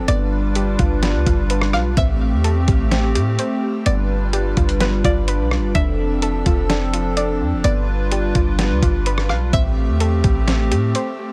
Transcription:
0.08 0.76 G1 loud
0.08 1.95 G3 medium
0.08 1.01 B3 loud
0.08 1.95 D4 medium
0.08 1.95 F4 medium
0.08 1.95 B4 medium
0.08 0.53 D5 loud
0.08 closed hi-hat medium
0.55 1.97 G4 medium
0.55 closed hi-hat medium
0.79 1.16 G1 loud
0.79 1.25 F4 medium
0.79 kick medium
0.79 closed hi-hat medium
1.03 1.97 B3 medium
1.03 snare loud
1.03 closed hi-hat medium
1.15 1.26 D2 loud
1.26 1.75 G1 loud
1.26 1.97 F4 medium
1.26 kick medium
1.26 closed hi-hat medium
1.50 1.97 B4 medium
1.50 closed hi-hat medium
1.62 cross-stick loud
1.73 1.96 B1 medium
1.73 1.96 F5 medium
1.73 cross-stick medium
1.97 2.34 A1 loud
1.97 3.84 A3 medium
1.97 2.91 C4 loud
1.97 3.84 C4 medium
1.97 3.84 G4 medium
1.97 2.42 E5 loud
1.97 kick loud
1.97 closed hi-hat medium
2.32 2.66 E2 loud
2.44 3.86 A4 medium
2.44 closed hi-hat medium
2.68 3.17 A1 loud
2.68 3.14 G4 medium
2.68 kick medium
2.68 closed hi-hat medium
2.91 3.86 C4 medium
2.91 snare loud
2.91 closed hi-hat medium
3.15 3.38 A2 loud
3.15 3.86 G4 medium
3.15 closed hi-hat medium
3.39 3.86 C5 medium
3.39 closed hi-hat medium
3.86 4.54 G1 loud
3.86 5.73 G3 medium
3.86 4.79 B3 medium
3.86 9.49 D4 medium
3.86 5.73 F4 medium
3.86 5.73 B4 medium
3.86 4.31 D5 loud
3.86 closed hi-hat medium
4.33 5.75 G4 medium
4.33 closed hi-hat medium
4.57 5.02 G1 loud
4.57 5.03 F4 medium
4.57 kick medium
4.57 closed hi-hat medium
4.69 closed hi-hat medium
4.80 5.75 B3 medium
4.80 5.03 B4 medium
4.80 snare loud
4.80 closed hi-hat medium
5.04 5.41 G1 loud
5.04 5.75 F4 medium
5.04 5.27 D5 medium
5.04 kick medium
5.04 closed hi-hat medium
5.28 5.75 B4 medium
5.28 closed hi-hat medium
5.40 5.59 B1 loud
5.51 cross-stick medium
5.58 5.74 G1 loud
5.75 6.43 F1 loud
5.75 7.62 F3 medium
5.75 7.62 C4 medium
5.75 6.69 D4 medium
5.75 7.62 A4 medium
5.75 6.19 E5 loud
5.75 kick loud
5.75 closed hi-hat medium
6.22 7.64 A4 medium
6.22 closed hi-hat medium
6.46 7.42 F1 loud
6.46 6.92 F4 medium
6.46 kick loud
6.46 closed hi-hat medium
6.70 7.64 D4 medium
6.70 snare loud
6.70 closed hi-hat medium
6.93 7.64 F4 medium
6.93 closed hi-hat medium
7.17 7.64 D5 loud
7.17 closed hi-hat medium
7.41 7.54 F2 loud
7.52 7.64 F1 loud
7.64 8.32 G1 loud
7.64 9.51 G3 medium
7.64 8.57 B3 loud
7.64 9.51 F4 medium
7.64 9.51 B4 medium
7.64 8.09 D5 loud
7.64 closed hi-hat medium
8.12 9.53 G4 medium
8.12 closed hi-hat medium
8.35 8.72 G1 loud
8.35 8.81 F4 medium
8.35 kick medium
8.35 closed hi-hat medium
8.59 9.53 B3 medium
8.59 snare loud
8.59 closed hi-hat medium
8.71 8.82 D2 loud
8.82 9.31 G1 loud
8.82 9.53 F4 medium
8.82 kick medium
8.82 closed hi-hat medium
9.06 9.53 B4 medium
9.06 closed hi-hat medium
9.18 cross-stick loud
9.29 9.52 B1 loud
9.29 9.52 F5 medium
9.29 cross-stick medium
9.53 9.90 A1 loud
9.53 11.33 A3 medium
9.53 11.33 C4 medium
9.53 10.46 C4 loud
9.53 11.33 G4 medium
9.53 9.98 E5 loud
9.53 kick loud
9.53 closed hi-hat medium
9.89 10.22 E2 loud
10.00 11.33 A4 medium
10.00 closed hi-hat medium
10.24 10.73 A1 loud
10.24 10.70 G4 medium
10.24 kick medium
10.24 closed hi-hat medium
10.48 11.33 C4 medium
10.48 snare loud
10.48 closed hi-hat medium
10.71 10.94 A2 loud
10.71 11.33 G4 medium
10.71 closed hi-hat medium
10.95 11.33 C5 medium
10.95 closed hi-hat medium

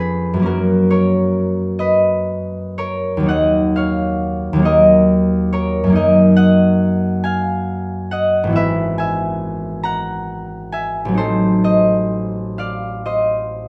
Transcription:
0.00 0.42 F2 medium
0.00 0.43 G#3 soft
0.00 0.45 B3 soft
0.00 0.41 C#4 soft
0.00 0.48 G#4 soft
0.00 0.48 B4 medium
0.00 0.89 C#5 medium
0.00 0.48 F5 medium
0.34 3.26 F#2 soft
0.34 3.19 F#3 soft
0.39 3.22 A#3 soft
0.39 3.31 C#4 soft
0.46 4.37 F#4 medium
0.46 0.91 A#4 medium
0.91 2.77 A#4 medium
0.91 2.77 C#5 medium
1.79 3.33 B4 medium
1.79 3.29 D#5 medium
2.78 4.65 A#4 medium
2.78 3.32 C#5 medium
3.17 4.52 D#2 medium
3.17 4.54 F#3 soft
3.23 4.58 A#3 soft
3.23 4.61 D#4 soft
3.29 4.64 D#5 medium
3.29 6.35 F#5 medium
3.76 5.51 C#5 medium
3.76 5.27 F5 medium
4.53 5.92 D#2 medium
4.53 5.86 F#3 soft
4.59 5.88 A#3 soft
4.59 5.91 D#4 soft
4.65 5.52 A#4 medium
4.65 5.94 D#5 medium
5.53 5.96 A#4 medium
5.53 5.98 C#5 medium
5.84 8.53 F#2 medium
5.84 8.55 F#3 soft
5.90 8.56 A#3 soft
5.90 8.58 D#4 soft
5.96 8.60 A#4 medium
5.96 6.36 D#5 medium
6.36 8.11 D#5 medium
6.36 8.10 F#5 medium
7.24 8.59 F5 medium
7.24 8.72 G#5 medium
8.11 8.59 D#5 medium
8.11 8.58 F#5 medium
8.44 11.16 G#1 medium
8.44 11.18 E3 soft
8.50 11.19 B3 soft
8.50 11.21 E4 soft
8.56 11.23 B4 medium
8.56 8.98 E5 medium
8.98 10.72 E5 medium
8.98 10.71 G#5 medium
9.83 13.68 F#5 medium
9.83 11.37 A#5 medium
10.72 11.22 E5 medium
10.72 11.22 G#5 medium
11.05 13.68 A1 medium
11.05 13.68 F#3 soft
11.11 13.68 C4 soft
11.11 13.68 D#4 soft
11.17 13.68 A4 soft
11.17 11.64 C5 medium
11.64 13.05 C5 medium
11.64 13.04 D#5 medium
12.58 13.68 D5 medium
12.58 13.39 F5 medium
13.06 13.68 C5 medium
13.06 13.68 D#5 medium

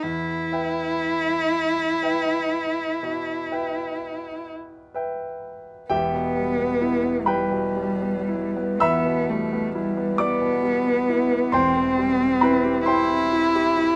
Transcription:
0.03 0.52 E2 soft
0.03 4.47 E4 medium
0.52 1.99 B4 soft
0.52 1.99 E5 soft
0.52 1.99 G5 soft
2.02 2.99 B4 soft
2.02 2.99 E5 soft
2.02 2.99 G5 soft
3.03 3.50 B2 soft
3.52 4.91 B4 soft
3.52 4.91 E5 soft
3.52 4.91 G5 soft
4.94 5.87 B4 soft
4.94 5.87 E5 soft
4.94 5.87 G5 soft
5.90 8.77 E1 soft
5.90 8.78 E2 soft
5.90 7.28 B3 medium
5.90 7.22 G4 soft
5.90 7.22 E5 soft
5.90 7.26 G5 medium
6.14 6.50 B2 soft
6.37 6.72 G3 soft
6.59 6.95 B3 soft
6.81 7.18 E4 soft
7.04 7.41 B3 soft
7.26 8.82 G3 medium
7.26 7.66 G3 soft
7.26 8.78 B4 soft
7.26 8.78 G5 soft
7.26 8.80 B5 medium
7.51 7.92 B2 soft
7.76 8.19 G3 soft
8.01 8.45 B3 soft
8.29 8.71 E4 soft
8.57 8.97 B3 soft
8.80 11.50 E2 soft
8.80 9.31 B3 medium
8.80 10.16 E5 medium
8.80 10.16 B5 medium
8.80 10.19 E6 medium
9.06 9.43 B2 soft
9.29 9.66 G3 soft
9.29 9.75 A3 soft
9.53 9.89 B3 soft
9.75 10.22 G3 soft
9.75 10.11 E4 soft
9.97 10.33 B3 soft
10.18 10.55 G3 soft
10.18 11.53 B3 medium
10.18 11.50 D5 medium
10.18 11.53 D6 medium
10.42 10.77 B2 soft
10.63 10.99 G3 soft
10.86 11.22 B3 soft
11.09 11.45 E4 soft
11.32 11.54 B3 soft
11.52 13.96 E1 soft
11.52 13.96 E2 soft
11.52 12.86 C4 medium
11.52 12.39 C5 medium
11.52 12.39 G5 medium
11.52 12.43 C6 medium
11.77 12.12 E3 soft
11.99 12.34 G3 soft
12.21 12.57 C4 soft
12.41 12.79 E4 soft
12.41 12.84 B4 medium
12.41 12.87 B5 medium
12.65 13.01 G4 soft
12.86 13.96 E4 medium
12.86 13.24 E4 soft
12.86 13.96 C5 soft
12.86 13.96 G5 medium
12.86 13.96 C6 medium
13.10 13.47 C4 soft
13.33 13.69 E4 soft
13.55 13.91 G4 soft
13.77 13.96 E4 soft

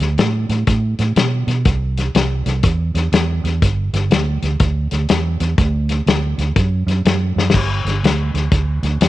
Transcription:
0.00 0.15 D2 medium
0.00 snare soft
0.00 closed hi-hat medium
0.18 0.45 A2 medium
0.18 snare loud
0.18 closed hi-hat medium
0.49 0.64 A2 medium
0.49 snare soft
0.49 closed hi-hat medium
0.67 0.94 A2 loud
0.67 kick loud
0.67 snare soft
0.67 closed hi-hat medium
0.99 1.14 A2 medium
0.99 snare soft
0.99 closed hi-hat medium
1.16 1.43 B2 medium
1.16 snare loud
1.16 closed hi-hat medium
1.47 1.63 B2 medium
1.47 snare soft
1.47 closed hi-hat medium
1.65 2.07 C2 loud
1.65 kick loud
1.65 snare soft
1.65 closed hi-hat medium
1.97 snare soft
1.97 closed hi-hat medium
2.15 2.41 C2 medium
2.15 snare medium
2.15 closed hi-hat medium
2.46 2.61 C2 medium
2.46 snare soft
2.46 closed hi-hat medium
2.63 2.90 E2 medium
2.63 kick loud
2.63 snare soft
2.63 closed hi-hat medium
2.94 3.10 E2 medium
2.94 snare soft
2.94 closed hi-hat medium
3.12 3.39 E2 loud
3.12 snare loud
3.12 closed hi-hat medium
3.44 3.59 E2 loud
3.44 snare soft
3.44 closed hi-hat medium
3.62 3.89 G1 medium
3.62 kick loud
3.62 snare soft
3.62 closed hi-hat medium
3.93 4.09 G1 loud
3.93 snare soft
3.93 closed hi-hat medium
4.10 4.37 D2 medium
4.10 snare loud
4.10 closed hi-hat medium
4.42 4.58 D2 medium
4.42 snare soft
4.42 closed hi-hat medium
4.60 4.87 D2 loud
4.60 kick loud
4.60 snare soft
4.60 closed hi-hat loud
4.91 5.07 D2 medium
4.91 snare soft
4.91 closed hi-hat medium
5.09 5.36 E2 medium
5.09 snare loud
5.09 closed hi-hat loud
5.40 5.56 E2 medium
5.40 snare soft
5.40 closed hi-hat medium
5.58 6.00 D2 loud
5.58 kick loud
5.58 snare soft
5.58 closed hi-hat medium
5.89 snare soft
5.89 closed hi-hat medium
6.06 6.33 D2 medium
6.06 snare loud
6.06 closed hi-hat medium
6.38 6.53 D2 medium
6.38 snare soft
6.38 closed hi-hat medium
6.56 6.82 F#2 loud
6.56 kick loud
6.56 snare soft
6.56 closed hi-hat medium
6.87 7.02 F#2 loud
6.87 snare soft
6.87 closed hi-hat medium
7.05 7.31 F#2 medium
7.05 snare loud
7.05 closed hi-hat medium
7.36 7.51 F#2 medium
7.36 snare medium
7.50 snare loud
7.54 7.80 G1 loud
7.54 kick loud
7.54 snare soft
7.54 crash loud
7.85 8.00 G1 medium
7.85 snare soft
7.85 closed hi-hat medium
8.03 8.29 D2 medium
8.03 snare loud
8.03 closed hi-hat medium
8.34 8.49 D2 medium
8.34 snare soft
8.34 closed hi-hat medium
8.52 8.78 D2 medium
8.52 kick loud
8.52 snare soft
8.52 closed hi-hat medium
8.83 8.98 D2 medium
8.83 snare soft
8.83 closed hi-hat medium
9.01 snare loud
9.01 closed hi-hat medium

